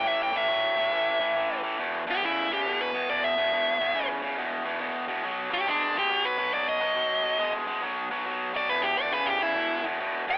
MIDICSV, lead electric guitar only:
0, 0, Header, 1, 2, 480
1, 0, Start_track
1, 0, Tempo, 431965
1, 64, Time_signature, 4, 2, 24, 8
1, 11532, End_track
2, 0, Start_track
2, 0, Title_t, "Lead electric guitar"
2, 0, Program_c, 0, 29
2, 81, Note_on_c, 0, 76, 91
2, 229, Note_off_c, 0, 76, 0
2, 255, Note_on_c, 0, 79, 77
2, 396, Note_off_c, 0, 79, 0
2, 414, Note_on_c, 0, 76, 99
2, 1799, Note_off_c, 0, 76, 0
2, 2337, Note_on_c, 0, 67, 89
2, 2479, Note_off_c, 0, 67, 0
2, 2498, Note_on_c, 0, 64, 91
2, 2794, Note_off_c, 0, 64, 0
2, 2814, Note_on_c, 0, 67, 76
2, 3112, Note_off_c, 0, 67, 0
2, 3122, Note_on_c, 0, 71, 97
2, 3426, Note_off_c, 0, 71, 0
2, 3440, Note_on_c, 0, 74, 92
2, 3590, Note_off_c, 0, 74, 0
2, 3613, Note_on_c, 0, 76, 102
2, 4532, Note_off_c, 0, 76, 0
2, 6153, Note_on_c, 0, 67, 101
2, 6306, Note_off_c, 0, 67, 0
2, 6315, Note_on_c, 0, 62, 81
2, 6622, Note_off_c, 0, 62, 0
2, 6651, Note_on_c, 0, 67, 82
2, 6947, Note_on_c, 0, 71, 95
2, 6950, Note_off_c, 0, 67, 0
2, 7257, Note_off_c, 0, 71, 0
2, 7266, Note_on_c, 0, 74, 77
2, 7422, Note_off_c, 0, 74, 0
2, 7431, Note_on_c, 0, 75, 96
2, 8360, Note_off_c, 0, 75, 0
2, 9515, Note_on_c, 0, 74, 102
2, 9661, Note_off_c, 0, 74, 0
2, 9661, Note_on_c, 0, 71, 89
2, 9813, Note_on_c, 0, 67, 88
2, 9819, Note_off_c, 0, 71, 0
2, 9970, Note_on_c, 0, 74, 104
2, 9974, Note_off_c, 0, 67, 0
2, 10133, Note_off_c, 0, 74, 0
2, 10150, Note_on_c, 0, 71, 86
2, 10293, Note_on_c, 0, 67, 88
2, 10303, Note_off_c, 0, 71, 0
2, 10471, Note_off_c, 0, 67, 0
2, 10471, Note_on_c, 0, 64, 86
2, 10934, Note_off_c, 0, 64, 0
2, 11450, Note_on_c, 0, 79, 117
2, 11532, Note_off_c, 0, 79, 0
2, 11532, End_track
0, 0, End_of_file